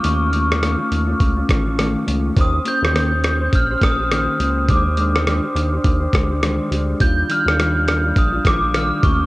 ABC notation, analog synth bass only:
X:1
M:4/4
L:1/16
Q:"Swing 16ths" 1/4=103
K:Eb
V:1 name="Analog synth bass" clef=bass
E,,4- E,, z E,,2 ^C,,2 =A,,,4 C,,2 | E,,2 z E,,4- E,, B,,,2 B,,,4 _D,,2 | E,,4- E,, z E,,2 E,,2 D,,4 D,,2 | E,,2 z E,,4- E,, B,,,2 B,,,4 E,,2 |]